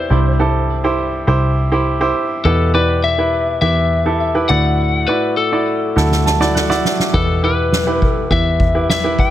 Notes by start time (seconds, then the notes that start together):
Already playing: E4 G4 B4 C5 D5
0.10 C2 G2 E4 G4 C5
0.40 E4 G4 A4
0.84 E4 G4 C5
1.27 C2 E4 G4 C5
1.72 E4 G4 C5
2.01 E4 G4 C5
2.45 E2 B2 E4 G4 A4 B4
2.74 E4 G4 B4 D5
3.04 E5
3.18 E4 G4 B4
3.62 E2 E4 G4 B4 E5
4.06 E4 G4 A4
4.35 E4 G4 B4
4.49 D2 A2 E4 F#4 D5 F#5
5.08 E4 F#4 B4 D5
5.37 A4
5.52 E4 F#4 D5
5.96 D2 E4 F#4 A4, snare
6.11 snare
6.26 A5, snare
6.40 E4 F#4 D5, snare
6.55 F#5, snare
6.70 E4 F#4 D5 E5, snare
6.85 snare
7.00 snare
7.13 E2 B2 E4 G4 A4 B4, kick
7.43 E4 G4 B4
7.72 snare
7.87 E4 G4 B4
8.02 kick
8.09 A4
8.31 E2 E4 G4 B4 E5, kick
8.60 kick
8.75 E4 G4 B4
8.90 E5, snare
9.04 E4 G4 B4
9.19 G5, kick